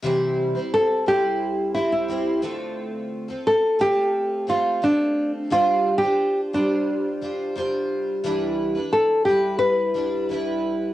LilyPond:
<<
  \new Staff \with { instrumentName = "Nylon-string guitar" } { \time 4/4 \key c \major \tempo 4 = 88 r4 a'8 g'4 e'16 e'8. r8 | r4 a'8 g'4 f'8 d'8. r16 | \tuplet 3/2 { f'4 g'8~ } g'16 r16 d'2 r8 | r4 a'8 g'8 b'4 r4 | }
  \new Staff \with { instrumentName = "Steel-string acoustic guitar" } { \time 4/4 \key c \major <c e g c' e' c''>8. <g c' e' c''>8. <g c' e' c''>4 <g c' e' c''>8 <g c' e' c''>8 <d a c' f' a'>8~ | <d a c' f' a'>8. <c' f' a'>8. <a c' f' a'>4 <a c' f' a'>8 <a c' f' a'>4 | <g d' f' c''>8. <d' f' c''>8. <g d' f' c''>4 <g d' f' c''>8 <g d' f' c''>4 | <e g d' e' b'>8. <d' e' b'>8. <g d' e' b'>4 <g d' e' b'>8 <g d' e' b'>4 | }
>>